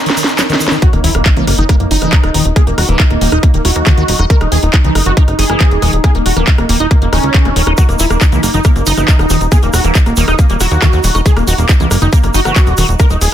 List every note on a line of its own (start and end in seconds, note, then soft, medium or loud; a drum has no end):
0.00 0.81 D#4 medium
0.00 0.82 D#4 medium
0.00 0.82 A#4 medium
0.00 0.84 C#5 medium
0.06 0.10 D#3 medium
0.06 snare medium
0.06 closed hi-hat soft
0.06 shaker soft
0.17 0.23 D#3 medium
0.17 open hi-hat loud
0.17 shaker medium
0.24 snare medium
0.24 closed hi-hat soft
0.24 shaker soft
0.38 0.42 F#3 medium
0.38 snare medium
0.38 clap loud
0.38 closed hi-hat loud
0.38 shaker medium
0.49 0.56 D#3 loud
0.49 snare loud
0.49 closed hi-hat soft
0.49 shaker soft
0.60 0.67 D#3 medium
0.60 open hi-hat medium
0.60 shaker medium
0.68 0.78 D#3 loud
0.68 snare loud
0.68 closed hi-hat soft
0.72 shaker soft
0.82 0.88 D#3 medium
0.82 13.34 D#4 medium
0.82 0.89 F#4 loud
0.82 kick loud
0.82 closed hi-hat medium
0.82 sub drop medium
0.93 0.99 D#1 medium
0.93 1.00 A#3 medium
0.93 cross-stick soft
0.93 closed hi-hat soft
1.04 1.10 D#1 loud
1.04 1.10 D#3 medium
1.04 1.11 E4 medium
1.04 open hi-hat loud
1.15 1.21 D#1 medium
1.15 1.22 A#3 medium
1.15 cross-stick medium
1.15 closed hi-hat soft
1.26 1.29 E4 medium
1.26 kick loud
1.26 clap loud
1.26 closed hi-hat loud
1.37 1.43 C#2 medium
1.37 1.46 E3 medium
1.37 1.44 A#3 medium
1.37 closed hi-hat soft
1.47 1.54 F#1 loud
1.47 1.54 A#3 medium
1.47 cross-stick soft
1.47 open hi-hat loud
1.58 1.65 F#1 loud
1.58 1.65 D#3 medium
1.58 1.65 D#4 medium
1.58 closed hi-hat soft
1.69 1.75 A#3 medium
1.69 1.76 A#3 medium
1.69 kick loud
1.69 cross-stick medium
1.69 closed hi-hat loud
1.80 1.86 F#1 medium
1.80 1.87 A#3 medium
1.80 closed hi-hat soft
1.91 1.97 F#1 loud
1.91 1.97 D#4 loud
1.91 2.47 D#4 loud
1.91 open hi-hat loud
2.02 2.08 F#1 loud
2.02 2.25 E3 medium
2.02 cross-stick soft
2.02 closed hi-hat soft
2.13 kick loud
2.13 clap loud
2.13 closed hi-hat loud
2.23 2.30 D#1 medium
2.23 2.30 C#3 medium
2.23 cross-stick medium
2.23 closed hi-hat soft
2.34 2.41 D#1 loud
2.34 2.44 D#3 medium
2.34 open hi-hat loud
2.45 2.52 D#1 loud
2.45 closed hi-hat soft
2.56 2.62 A#3 medium
2.56 2.63 G#4 loud
2.56 kick loud
2.56 cross-stick soft
2.56 closed hi-hat medium
2.67 2.73 D#1 medium
2.67 2.71 D#3 medium
2.67 2.74 A#3 medium
2.67 closed hi-hat soft
2.78 2.84 D#1 loud
2.78 2.85 F#4 medium
2.78 cross-stick medium
2.78 open hi-hat loud
2.89 2.95 D#1 loud
2.89 2.98 E3 medium
2.89 2.96 A#3 medium
2.89 closed hi-hat soft
3.00 3.03 D#3 medium
3.00 kick loud
3.00 clap loud
3.00 closed hi-hat medium
3.10 3.17 D#1 medium
3.10 3.17 A#3 medium
3.10 cross-stick soft
3.10 closed hi-hat soft
3.21 3.28 D#1 loud
3.21 3.31 D#3 medium
3.21 3.28 A#3 medium
3.21 open hi-hat loud
3.32 3.39 D#1 loud
3.32 3.38 D#4 medium
3.32 3.39 D#4 loud
3.32 cross-stick medium
3.32 closed hi-hat soft
3.43 3.50 A#3 medium
3.43 kick loud
3.43 closed hi-hat medium
3.54 3.60 D#1 medium
3.54 3.58 D#3 medium
3.54 3.61 A#3 medium
3.54 closed hi-hat soft
3.65 3.71 D#1 loud
3.65 3.71 E4 medium
3.65 4.21 F#4 loud
3.65 cross-stick soft
3.65 open hi-hat loud
3.76 3.82 D#2 loud
3.76 3.83 A#3 medium
3.76 closed hi-hat soft
3.87 3.93 D#3 loud
3.87 3.94 A#3 medium
3.87 kick loud
3.87 cross-stick medium
3.87 clap loud
3.87 closed hi-hat medium
3.97 4.04 D#2 medium
3.97 4.04 D#3 medium
3.97 closed hi-hat soft
4.08 4.15 D#1 loud
4.08 4.69 D#4 medium
4.08 open hi-hat loud
4.19 4.26 E1 medium
4.19 4.25 D#4 medium
4.19 cross-stick soft
4.19 closed hi-hat soft
4.30 4.36 D#3 medium
4.30 4.37 A#4 loud
4.30 kick loud
4.30 closed hi-hat medium
4.41 4.47 D#1 medium
4.41 4.48 D#4 medium
4.41 cross-stick medium
4.41 closed hi-hat soft
4.52 4.58 D#1 loud
4.52 4.58 D#3 medium
4.52 4.59 G#4 medium
4.52 open hi-hat loud
4.63 4.69 D#1 medium
4.63 4.70 D#4 medium
4.63 closed hi-hat soft
4.74 4.77 E4 medium
4.74 kick loud
4.74 cross-stick soft
4.74 clap loud
4.74 closed hi-hat medium
4.84 4.91 C#2 medium
4.84 4.94 E3 medium
4.84 4.91 D#4 medium
4.84 closed hi-hat soft
4.95 5.02 F#1 loud
4.95 5.02 D#4 medium
4.95 cross-stick medium
4.95 open hi-hat loud
5.06 5.12 F#1 loud
5.06 5.12 D#3 medium
5.06 5.13 F#4 loud
5.06 closed hi-hat soft
5.17 5.23 A#3 medium
5.17 5.24 D#4 medium
5.17 kick loud
5.17 closed hi-hat medium
5.28 5.34 F#1 medium
5.28 5.35 D#4 medium
5.28 cross-stick soft
5.28 closed hi-hat soft
5.39 5.45 F#1 loud
5.39 5.45 D#4 loud
5.39 5.95 G#4 loud
5.39 open hi-hat loud
5.50 5.56 F#1 loud
5.50 5.73 E3 medium
5.50 cross-stick medium
5.50 closed hi-hat soft
5.60 kick loud
5.60 clap loud
5.60 closed hi-hat medium
5.71 5.78 D#1 medium
5.71 5.78 C#3 medium
5.71 closed hi-hat soft
5.82 5.89 D#1 loud
5.82 5.92 D#3 medium
5.82 cross-stick soft
5.82 open hi-hat loud
5.93 5.99 D#1 medium
5.93 closed hi-hat soft
6.04 6.10 A#3 medium
6.04 6.11 G#4 loud
6.04 kick loud
6.04 cross-stick medium
6.04 closed hi-hat medium
6.15 6.21 D#1 medium
6.15 6.19 D#3 medium
6.15 6.22 A#3 medium
6.15 closed hi-hat soft
6.26 6.32 D#1 loud
6.26 6.33 F#4 medium
6.26 open hi-hat loud
6.37 6.43 D#1 loud
6.37 6.46 E3 medium
6.37 6.44 A#3 medium
6.37 cross-stick soft
6.37 closed hi-hat soft
6.47 6.51 D#3 medium
6.47 kick loud
6.47 clap loud
6.47 closed hi-hat medium
6.58 6.65 D#1 medium
6.58 6.65 A#3 medium
6.58 cross-stick medium
6.58 closed hi-hat soft
6.69 6.76 D#1 loud
6.69 6.79 D#3 medium
6.69 6.76 A#3 medium
6.69 open hi-hat loud
6.80 6.86 D#1 loud
6.80 6.86 D#4 medium
6.80 6.87 D#4 loud
6.80 closed hi-hat soft
6.91 6.98 A#3 medium
6.91 kick loud
6.91 cross-stick soft
6.91 closed hi-hat medium
7.02 7.08 E1 medium
7.02 7.05 D#3 medium
7.02 7.09 A#3 medium
7.02 closed hi-hat soft
7.13 7.19 D#1 loud
7.13 7.19 D#3 loud
7.13 7.69 C#4 loud
7.13 cross-stick medium
7.13 open hi-hat loud
7.24 7.30 C#2 medium
7.24 closed hi-hat soft
7.34 7.47 D#3 medium
7.34 kick loud
7.34 clap loud
7.34 closed hi-hat medium
7.45 7.52 D#1 medium
7.45 7.51 D#4 loud
7.45 cross-stick soft
7.45 closed hi-hat soft
7.56 7.62 D#1 loud
7.56 7.62 D#3 medium
7.56 open hi-hat loud
7.67 7.73 D#1 medium
7.67 7.73 D#4 medium
7.67 cross-stick medium
7.67 closed hi-hat soft
7.78 7.84 D#3 medium
7.78 7.85 F#4 loud
7.78 kick loud
7.78 closed hi-hat medium
7.78 shaker soft
7.89 7.95 D#1 medium
7.89 7.96 A#3 medium
7.89 cross-stick soft
7.89 closed hi-hat soft
7.89 shaker soft
7.99 8.06 D#1 loud
7.99 8.06 D#3 medium
7.99 8.07 E4 medium
7.99 open hi-hat loud
7.99 shaker medium
8.10 8.17 D#1 loud
8.10 8.17 A#3 medium
8.10 cross-stick medium
8.10 closed hi-hat soft
8.10 shaker soft
8.21 8.25 E4 medium
8.21 kick loud
8.21 clap loud
8.21 closed hi-hat medium
8.21 shaker medium
8.32 8.39 C#2 medium
8.32 8.42 E3 medium
8.32 8.39 A#3 medium
8.32 closed hi-hat soft
8.32 shaker soft
8.43 8.49 F#1 loud
8.43 8.50 A#3 medium
8.43 cross-stick soft
8.43 open hi-hat loud
8.43 shaker medium
8.54 8.60 F#1 loud
8.54 8.60 D#3 medium
8.54 8.61 D#4 medium
8.54 closed hi-hat soft
8.54 shaker soft
8.64 8.71 A#3 medium
8.64 8.72 A#3 medium
8.64 kick loud
8.64 cross-stick medium
8.64 closed hi-hat medium
8.64 shaker medium
8.76 8.82 F#1 medium
8.76 8.83 A#3 medium
8.76 closed hi-hat soft
8.76 shaker soft
8.86 8.93 F#1 loud
8.86 8.93 D#4 loud
8.86 9.43 D#4 loud
8.86 open hi-hat loud
8.86 shaker medium
8.97 9.04 F#1 loud
8.97 9.21 E3 medium
8.97 cross-stick soft
8.97 closed hi-hat soft
8.97 shaker soft
9.08 kick loud
9.08 clap loud
9.08 closed hi-hat medium
9.08 shaker soft
9.19 9.26 D#1 medium
9.19 9.25 C#3 medium
9.19 cross-stick medium
9.19 closed hi-hat soft
9.19 shaker soft
9.30 9.36 D#1 loud
9.30 9.39 D#3 medium
9.30 open hi-hat loud
9.30 shaker medium
9.41 9.47 D#1 medium
9.41 closed hi-hat soft
9.41 shaker soft
9.52 9.58 A#3 medium
9.52 9.59 G#4 loud
9.52 kick loud
9.52 cross-stick soft
9.52 closed hi-hat medium
9.52 shaker medium
9.62 9.69 D#1 medium
9.62 9.66 D#3 medium
9.62 9.70 A#3 medium
9.62 closed hi-hat soft
9.62 shaker soft
9.74 9.80 D#1 loud
9.74 9.81 F#4 medium
9.74 cross-stick medium
9.74 open hi-hat loud
9.74 shaker medium
9.84 9.91 D#1 medium
9.84 9.94 E3 medium
9.84 9.91 A#3 medium
9.84 closed hi-hat soft
9.84 shaker soft
9.95 9.99 D#3 medium
9.95 kick loud
9.95 clap loud
9.95 closed hi-hat medium
9.95 shaker medium
10.06 10.12 D#1 medium
10.06 10.13 A#3 medium
10.06 cross-stick soft
10.06 closed hi-hat soft
10.06 shaker soft
10.17 10.23 D#1 loud
10.17 10.26 D#3 medium
10.17 10.24 A#3 medium
10.17 open hi-hat loud
10.17 shaker medium
10.28 10.34 D#1 loud
10.28 10.35 D#4 medium
10.28 10.34 D#4 medium
10.28 cross-stick medium
10.28 closed hi-hat soft
10.28 shaker soft
10.39 10.46 A#3 medium
10.39 kick loud
10.39 closed hi-hat medium
10.39 shaker soft
10.49 10.56 D#1 medium
10.49 10.53 D#3 medium
10.49 10.57 A#3 medium
10.49 closed hi-hat soft
10.49 shaker soft
10.60 10.67 D#1 loud
10.60 10.67 E4 medium
10.60 11.17 F#4 loud
10.60 cross-stick soft
10.60 open hi-hat loud
10.60 shaker loud
10.71 10.78 D#2 loud
10.71 10.78 A#3 medium
10.71 closed hi-hat soft
10.71 shaker soft
10.82 10.88 D#3 loud
10.82 10.89 A#3 medium
10.82 kick loud
10.82 cross-stick medium
10.82 clap loud
10.82 closed hi-hat medium
10.82 shaker medium
10.92 10.99 D#2 medium
10.92 10.99 D#3 medium
10.92 closed hi-hat soft
10.92 shaker soft
11.03 11.10 D#1 loud
11.03 open hi-hat loud
11.03 shaker medium
11.15 11.21 E1 medium
11.15 11.21 D#4 medium
11.15 cross-stick soft
11.15 closed hi-hat soft
11.15 shaker soft
11.26 11.32 D#3 medium
11.26 11.33 G#4 loud
11.26 kick loud
11.26 closed hi-hat loud
11.26 shaker soft
11.37 11.43 D#1 medium
11.37 11.44 A#3 medium
11.37 cross-stick medium
11.37 closed hi-hat soft
11.37 shaker soft
11.47 11.54 D#1 loud
11.47 11.54 D#3 medium
11.47 11.54 F#4 medium
11.47 open hi-hat loud
11.47 shaker medium
11.58 11.65 D#1 loud
11.58 11.65 A#3 medium
11.58 closed hi-hat soft
11.58 shaker soft
11.69 11.73 E4 medium
11.69 kick loud
11.69 cross-stick soft
11.69 clap loud
11.69 closed hi-hat loud
11.69 shaker soft
11.80 11.86 C#2 medium
11.80 11.89 E3 medium
11.80 11.87 A#3 medium
11.80 closed hi-hat soft
11.80 shaker soft
11.91 11.97 F#1 loud
11.91 11.98 A#3 medium
11.91 cross-stick medium
11.91 open hi-hat loud
11.91 shaker loud
12.01 12.08 F#1 loud
12.01 12.08 D#3 medium
12.01 12.09 D#4 loud
12.01 closed hi-hat soft
12.01 shaker soft
12.13 12.20 A#3 medium
12.13 12.19 A#3 medium
12.13 kick loud
12.13 closed hi-hat loud
12.13 shaker medium
12.23 12.30 F#1 medium
12.23 12.30 A#3 medium
12.23 cross-stick soft
12.23 closed hi-hat soft
12.23 shaker soft
12.34 12.41 F#1 loud
12.34 12.41 D#4 loud
12.34 12.91 F#4 loud
12.34 open hi-hat loud
12.34 shaker medium
12.45 12.52 F#1 loud
12.45 12.68 E3 medium
12.45 cross-stick medium
12.45 closed hi-hat soft
12.45 shaker soft
12.56 kick loud
12.56 clap loud
12.56 closed hi-hat medium
12.56 shaker soft
12.66 12.73 D#1 medium
12.66 12.73 C#3 medium
12.66 closed hi-hat soft
12.66 shaker soft
12.78 12.84 D#1 loud
12.78 12.87 D#3 medium
12.78 cross-stick soft
12.78 open hi-hat loud
12.78 shaker medium
12.89 12.95 D#1 medium
12.89 closed hi-hat soft
12.89 shaker soft
12.99 13.06 A#3 medium
12.99 13.07 A#4 loud
12.99 kick loud
12.99 cross-stick medium
12.99 closed hi-hat loud
12.99 shaker medium
13.10 13.17 D#1 medium
13.10 13.14 D#3 medium
13.10 13.17 D#4 medium
13.10 closed hi-hat soft
13.10 shaker soft
13.21 13.28 D#1 loud
13.21 13.28 G#4 medium
13.21 open hi-hat loud
13.21 shaker medium